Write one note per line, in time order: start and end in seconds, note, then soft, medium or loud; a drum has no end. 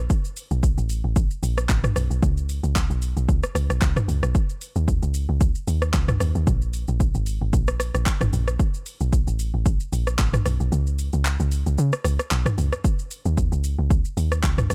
0.10 kick loud
0.10 shaker medium
0.25 shaker soft
0.37 open hi-hat medium
0.37 shaker loud
0.51 0.76 B1 loud
0.51 shaker medium
0.63 kick loud
0.63 shaker medium
0.78 1.02 A1 loud
0.78 shaker medium
0.89 open hi-hat medium
0.89 shaker loud
1.04 1.29 A1 medium
1.16 kick loud
1.16 shaker medium
1.31 shaker medium
1.43 1.67 A#1 loud
1.43 open hi-hat medium
1.43 shaker loud
1.58 cross-stick loud
1.58 shaker medium
1.69 1.94 A1 loud
1.69 kick loud
1.69 clap loud
1.69 shaker medium
1.84 cross-stick loud
1.84 mid tom loud
1.84 shaker medium
1.96 2.09 B1 medium
1.96 cross-stick loud
1.96 open hi-hat medium
1.96 shaker medium
2.10 2.21 B1 medium
2.10 shaker medium
2.23 2.60 C#2 loud
2.23 kick loud
2.23 shaker medium
2.37 shaker soft
2.49 open hi-hat medium
2.49 shaker loud
2.63 2.88 C#2 loud
2.63 shaker medium
2.76 kick loud
2.76 clap loud
2.76 shaker medium
2.90 3.15 B1 loud
2.90 shaker medium
3.02 open hi-hat medium
3.02 shaker loud
3.17 3.28 B1 medium
3.17 shaker medium
3.29 3.42 C#2 loud
3.29 kick loud
3.29 shaker medium
3.43 cross-stick loud
3.43 shaker medium
3.55 3.69 C#2 medium
3.55 cross-stick loud
3.55 open hi-hat medium
3.55 shaker loud
3.70 3.81 B1 medium
3.70 cross-stick loud
3.70 shaker medium
3.81 3.95 C#2 loud
3.81 kick loud
3.81 clap loud
3.81 shaker medium
3.96 cross-stick loud
3.96 mid tom medium
3.96 shaker medium
4.08 4.22 C#2 loud
4.08 open hi-hat medium
4.08 shaker medium
4.23 4.34 B1 loud
4.23 cross-stick loud
4.23 shaker medium
4.35 kick loud
4.35 shaker medium
4.49 shaker soft
4.61 open hi-hat medium
4.61 shaker loud
4.76 5.00 D#2 loud
4.76 shaker medium
4.88 kick loud
4.88 shaker medium
5.03 5.27 C#2 loud
5.03 shaker medium
5.14 open hi-hat medium
5.14 shaker loud
5.29 5.53 C#2 loud
5.41 kick loud
5.41 shaker medium
5.55 shaker medium
5.67 5.92 D#2 loud
5.67 open hi-hat medium
5.67 shaker loud
5.82 cross-stick loud
5.82 shaker medium
5.93 6.18 C#2 loud
5.93 kick loud
5.93 clap medium
5.93 shaker medium
6.08 cross-stick loud
6.08 mid tom loud
6.08 shaker medium
6.20 6.34 D#2 medium
6.20 cross-stick loud
6.20 open hi-hat medium
6.20 shaker medium
6.35 6.46 D#2 loud
6.35 shaker medium
6.47 6.85 A#1 loud
6.47 kick loud
6.47 shaker medium
6.62 shaker soft
6.73 open hi-hat medium
6.73 shaker loud
6.88 7.13 A#1 loud
6.88 shaker medium
7.00 kick loud
7.00 shaker medium
7.15 7.39 G#1 loud
7.15 shaker medium
7.26 open hi-hat medium
7.26 shaker loud
7.41 7.52 G#1 medium
7.53 7.91 A#1 loud
7.53 kick loud
7.53 shaker medium
7.68 cross-stick loud
7.68 shaker medium
7.80 cross-stick loud
7.80 open hi-hat medium
7.80 shaker loud
7.94 8.06 A#1 medium
7.94 cross-stick medium
7.94 shaker medium
8.06 kick loud
8.06 clap loud
8.06 shaker medium
8.21 8.32 G#1 medium
8.21 cross-stick loud
8.21 mid tom loud
8.21 shaker medium
8.33 8.58 A#1 loud
8.33 open hi-hat medium
8.33 shaker medium
8.48 cross-stick loud
8.48 shaker medium
8.59 kick loud
8.59 shaker medium
8.74 shaker soft
8.86 open hi-hat medium
8.86 shaker loud
9.00 9.25 B1 medium
9.00 shaker medium
9.13 kick loud
9.13 shaker medium
9.27 9.52 A1 medium
9.27 shaker medium
9.39 open hi-hat medium
9.39 shaker loud
9.54 9.78 A1 medium
9.66 kick loud
9.66 shaker medium
9.80 shaker medium
9.93 10.17 A#1 loud
9.93 open hi-hat medium
9.93 shaker loud
10.07 cross-stick loud
10.07 shaker medium
10.18 10.43 A1 loud
10.18 kick loud
10.18 clap loud
10.18 shaker medium
10.33 cross-stick loud
10.33 mid tom medium
10.33 shaker medium
10.45 10.59 B1 medium
10.45 cross-stick loud
10.45 open hi-hat medium
10.45 shaker medium
10.60 10.71 B1 loud
10.60 shaker medium
10.72 11.10 C#2 loud
10.72 shaker medium
10.87 shaker soft
10.99 open hi-hat medium
10.99 shaker loud
11.13 11.38 C#2 loud
11.13 shaker medium
11.25 clap loud
11.25 shaker medium
11.40 11.64 C#2 loud
11.40 shaker medium
11.52 open hi-hat medium
11.52 shaker loud
11.66 11.77 C#2 loud
11.66 shaker medium
11.78 11.92 C#3 loud
11.78 shaker medium
11.93 cross-stick loud
11.93 shaker medium
12.04 12.18 C#2 loud
12.04 cross-stick loud
12.04 open hi-hat medium
12.04 shaker loud
12.19 cross-stick loud
12.19 shaker medium
12.31 12.45 B1 loud
12.31 clap loud
12.31 shaker medium
12.46 cross-stick loud
12.46 mid tom loud
12.46 shaker medium
12.58 12.71 C#2 loud
12.58 open hi-hat medium
12.58 shaker medium
12.73 cross-stick loud
12.73 shaker medium
12.84 kick loud
12.84 shaker medium
12.99 shaker soft
13.11 open hi-hat medium
13.11 shaker loud
13.25 13.50 D#2 loud
13.25 shaker medium
13.37 kick loud
13.37 shaker medium
13.52 13.77 C#2 loud
13.52 shaker medium
13.64 open hi-hat medium
13.64 shaker loud
13.79 14.03 C#2 loud
13.90 kick loud
13.90 shaker medium
14.05 shaker medium
14.17 14.42 D#2 loud
14.17 open hi-hat medium
14.17 shaker loud
14.32 cross-stick loud
14.32 shaker medium
14.43 14.68 C#2 loud
14.43 kick loud
14.43 clap loud
14.43 shaker medium
14.58 cross-stick loud
14.58 mid tom medium
14.58 shaker medium
14.70 14.75 D#2 medium
14.70 cross-stick loud
14.70 open hi-hat medium
14.70 shaker medium